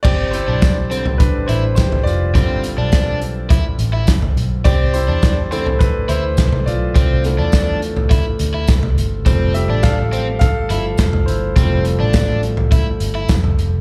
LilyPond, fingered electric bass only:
\new Staff \with { instrumentName = "Fingered electric bass" } { \clef bass \time 4/4 \key g \mixolydian \tempo 4 = 104 g,,8. b,,4. r16 a,,8 g,,8 f,,8 | g,,8. b,,4. r16 a,,8 g,,8 b,,8 | c,8. e,4. r16 d,8 c,8 b,,8 | c,8. e,4. r16 d,8 c,8 g,,8 |
f,,8. a,,4. r16 g,,8 f,,8 g,,8 | f,,8. a,,4. r16 g,,8 f,,8 f,,8 | }